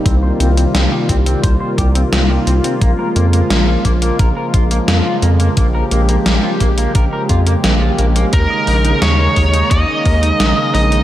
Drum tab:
HH |x-xxx-xxx-xxx-xx|x-xxx-xxx-xxx-xx|x-xxx-xxx-xxx-xx|x-oxx-oxx-oxx-ox|
SD |----o-------o---|----o-------o---|----o-------o---|----o-------o---|
BD |o-----o-o-o-----|o-----o-o-o-----|o-----o-o-o-----|o-----o-o-o-----|